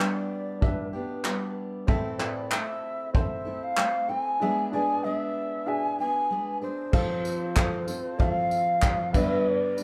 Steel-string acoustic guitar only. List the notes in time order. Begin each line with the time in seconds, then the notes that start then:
Already playing: G3
0.00 B3 D4 G4
0.93 B3 D4 G4
1.24 G3 B3 D4 G4
1.87 A2 E3 A3 C4 E4 A4
2.19 A2 E3 A3 C4 E4 A4
2.51 A3 C4 E4 A4
3.45 A3 C4 E4 A4
3.77 A3 C4 A4
4.08 A3 C4 E4 A4
4.41 E3 G#3 B3 D4 G#4
4.73 E3 G#3 B3 D4 G#4
5.04 G#3 B3 D4 G#4
5.99 B3 D4 G#4
6.31 G#3 B3 D4 G#4
6.62 D4 G#4
6.93 F3 C4 F4 A4
7.56 F3 C4 F4 A4
7.87 C4 F4 A4
8.19 F3 C4 F4 A4
8.82 F3 C4 F4 A4
9.14 G2 D3 G3 B3 D4 B4
9.77 G3 B3 D4 B4